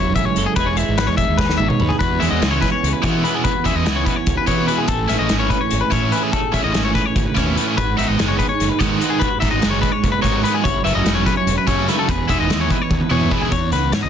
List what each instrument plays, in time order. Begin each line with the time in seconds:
Already playing: fingered electric bass E1, clean electric guitar F#2 F#3 E4 A4 C#5
0.16 fingered electric bass A1, clean electric guitar C#3 G#3 E5, kick, closed hi-hat
0.25 clean electric guitar C#5
0.36 fingered electric bass F#1, clean electric guitar A4, closed hi-hat
0.46 clean electric guitar G#4
0.56 fingered electric bass E1, clean electric guitar E3 G#3 B4, kick, closed hi-hat
0.60 clean electric guitar D#4 G#4
0.66 clean electric guitar C#5
0.77 clean electric guitar E5, closed hi-hat
0.88 fingered electric bass G#1
0.98 clean electric guitar D#4 B4, snare, closed hi-hat
1.07 fingered electric bass E2, clean electric guitar C#5
1.17 clean electric guitar G#3 E5, kick, closed hi-hat
1.29 fingered electric bass D#2
1.37 clean electric guitar D#4 B4, kick, snare
1.50 snare
1.58 fingered electric bass G#1, clean electric guitar B2 E5, high tom
1.62 clean electric guitar G#3
1.68 clean electric guitar C#5, mid tom
1.80 fingered electric bass D#2, clean electric guitar B4, mid tom
1.89 clean electric guitar G#4, floor tom
1.99 fingered electric bass E2, clean electric guitar E2 F#4 B4, kick, closed hi-hat
2.20 fingered electric bass E2, overdriven electric guitar E3 G#3 B3 E4, clean electric guitar C#4 E5, snare, closed hi-hat
2.31 fingered electric bass E2, clean electric guitar D#5
2.41 fingered electric bass C#2, overdriven electric guitar E3 G#3 B3 E4, clean electric guitar E3 E4, snare, closed hi-hat
2.51 clean electric guitar F#4 C#5
2.61 clean electric guitar C#4 B4, kick, snare, closed hi-hat
2.72 clean electric guitar C#5
2.83 fingered electric bass C#2, closed hi-hat
2.93 clean electric guitar B4
3.02 clean electric guitar B2 C#5, overdriven electric guitar E3 G#3 B3 E4, fingered electric bass E3, kick, closed hi-hat
3.24 overdriven electric guitar E3 G#3 B3 E4, clean electric guitar E4 B4, closed hi-hat
3.35 clean electric guitar F#4 G#4
3.44 clean electric guitar E2 F#4 B4, kick, closed hi-hat
3.64 fingered electric bass E2, overdriven electric guitar E3 G#3 B3 E4, clean electric guitar C#4 E5, kick, closed hi-hat
3.75 fingered electric bass E2, clean electric guitar D#5
3.84 fingered electric bass C#2, overdriven electric guitar E3 G#3 B3 E4, clean electric guitar E3 E4, snare, closed hi-hat
3.96 clean electric guitar F#4 C#5
4.05 clean electric guitar C#4 B4, kick, closed hi-hat
4.16 clean electric guitar C#5
4.26 fingered electric bass C#2, kick, closed hi-hat
4.37 clean electric guitar B4
4.47 clean electric guitar B2 C#5, overdriven electric guitar E3 G#3 B3 E4, fingered electric bass E3, kick, closed hi-hat
4.66 overdriven electric guitar E3 G#3 B3 E4, clean electric guitar F#4 B4, closed hi-hat
4.78 clean electric guitar G#4
4.88 fingered electric bass A1, clean electric guitar A2 G#4 A4, kick, closed hi-hat
5.08 fingered electric bass A1, overdriven electric guitar E3 A3 C#4 E4, clean electric guitar B3 E5, snare, closed hi-hat
5.19 fingered electric bass A1, clean electric guitar C#4 D#5
5.29 fingered electric bass G#1, overdriven electric guitar E3 A3 C#4 E4, clean electric guitar E3 G#4, snare, closed hi-hat
5.39 clean electric guitar C#5
5.50 clean electric guitar C#4 B4, kick, closed hi-hat
5.61 clean electric guitar C#5
5.70 fingered electric bass G#1, closed hi-hat
5.81 clean electric guitar B4
5.90 fingered electric bass A2, overdriven electric guitar E3 A3 C#4 E4, clean electric guitar E3 C#5, kick, closed hi-hat
6.11 overdriven electric guitar E3 A3 C#4 E4, clean electric guitar G#4 B4, closed hi-hat
6.23 clean electric guitar G#4
6.33 clean electric guitar A2 G#4 A4, kick, closed hi-hat
6.52 fingered electric bass A1, overdriven electric guitar E3 A3 C#4 E4, clean electric guitar E5, kick, closed hi-hat
6.57 clean electric guitar C#4
6.64 fingered electric bass A1, clean electric guitar D#5
6.73 fingered electric bass G#1, overdriven electric guitar E3 A3 C#4 E4, snare, closed hi-hat
6.77 clean electric guitar E3 G#4
6.85 clean electric guitar C#5
6.95 clean electric guitar C#4 B4, kick, snare, closed hi-hat
7.05 clean electric guitar C#5
7.16 fingered electric bass G#1, clean electric guitar C#3, kick, closed hi-hat
7.26 clean electric guitar B4
7.35 fingered electric bass D#2, clean electric guitar B2 C#5, overdriven electric guitar E3 A3 C#4 E4, kick, snare, closed hi-hat
7.55 clean electric guitar A2 B4, overdriven electric guitar E3 A3 C#4 E4, closed hi-hat
7.68 clean electric guitar G#4
7.77 fingered electric bass G#1, clean electric guitar G#2 F#4 B4, kick, closed hi-hat
7.97 fingered electric bass G#1, overdriven electric guitar D#3 G#3 B3 D#4, clean electric guitar D#4 E5, closed hi-hat
8.08 fingered electric bass G#1, clean electric guitar D#5
8.18 fingered electric bass F#1, overdriven electric guitar D#3 G#3 B3 D#4, clean electric guitar G#3 G#4, snare, closed hi-hat
8.28 clean electric guitar C#5
8.39 clean electric guitar D#4 B4, kick, closed hi-hat
8.49 clean electric guitar C#5
8.60 fingered electric bass F#1, snare, closed hi-hat
8.69 clean electric guitar B4
8.79 fingered electric bass G#2, overdriven electric guitar D#3 G#3 B3 D#4, clean electric guitar D#3 C#5, kick, closed hi-hat
8.99 overdriven electric guitar D#3 G#3 B3 D#4, clean electric guitar B4, closed hi-hat
9.03 clean electric guitar F#4
9.10 clean electric guitar G#4
9.19 clean electric guitar G#2 B4, kick, closed hi-hat
9.24 clean electric guitar F#4
9.40 fingered electric bass G#1, overdriven electric guitar D#3 G#3 B3 D#4, clean electric guitar D#4 E5, kick, snare, closed hi-hat
9.51 fingered electric bass G#1, clean electric guitar D#5
9.61 fingered electric bass F#1, overdriven electric guitar D#3 G#3 B3 D#4, clean electric guitar G#3 G#4, snare, closed hi-hat
9.71 clean electric guitar C#5
9.81 clean electric guitar D#4 B4, kick, closed hi-hat
9.92 clean electric guitar C#5
10.03 fingered electric bass F#1, clean electric guitar B2, kick, closed hi-hat
10.12 clean electric guitar B4
10.22 fingered electric bass G#1, clean electric guitar A2 C#5, overdriven electric guitar D#3 G#3 B3 D#4, kick, snare, closed hi-hat
10.42 clean electric guitar G#2 B4, overdriven electric guitar D#3 G#3 B3 D#4, closed hi-hat
10.54 clean electric guitar G#4
10.62 fingered electric bass F#1, clean electric guitar F#2 E4 C#5, kick, closed hi-hat
10.84 fingered electric bass F#1, overdriven electric guitar C#3 F#3 A3 C#4, clean electric guitar B3 E5, closed hi-hat
10.94 fingered electric bass F#1, clean electric guitar C#4 D#5
11.04 fingered electric bass E1, overdriven electric guitar C#3 F#3 A3 C#4, clean electric guitar F#3 E4, snare, closed hi-hat
11.15 clean electric guitar C#5
11.26 clean electric guitar C#4 B4, kick, snare, closed hi-hat
11.37 clean electric guitar C#5
11.46 fingered electric bass E1, closed hi-hat
11.58 clean electric guitar B4
11.67 fingered electric bass F#2, clean electric guitar C#3 C#5, overdriven electric guitar C#3 F#3 A3 C#4, kick, closed hi-hat
11.87 overdriven electric guitar C#3 F#3 A3 C#4, clean electric guitar E4 B4, snare, closed hi-hat
11.99 clean electric guitar A4
12.08 fingered electric bass E1, clean electric guitar E2 G#4 B4, kick, closed hi-hat
12.28 fingered electric bass E1, overdriven electric guitar E3 G#3 B3 E4, clean electric guitar D#4 E5, kick, closed hi-hat
12.40 fingered electric bass E1, clean electric guitar D#5
12.48 fingered electric bass D#2, overdriven electric guitar E3 G#3 B3 E4, clean electric guitar E3 B4, snare, closed hi-hat
12.61 clean electric guitar C#5
12.70 clean electric guitar D#4 B4, kick, closed hi-hat
12.82 clean electric guitar C#5
12.90 fingered electric bass D#2, kick, high tom
13.01 clean electric guitar B4, high tom
13.10 fingered electric bass E2, clean electric guitar B2 C#5, overdriven electric guitar E3 G#3 B3 E4, mid tom
13.21 mid tom
13.30 overdriven electric guitar E3 G#3 B3 E4, clean electric guitar G#4 B4, kick
13.41 clean electric guitar G#4, floor tom
13.51 clean electric guitar E2 C#5, fingered electric bass E2, kick, closed hi-hat
13.72 fingered electric bass C#2, clean electric guitar F#4 B4, snare, closed hi-hat
13.92 fingered electric bass G#2, clean electric guitar C#5, snare, closed hi-hat
14.03 fingered electric bass C#2, clean electric guitar D#5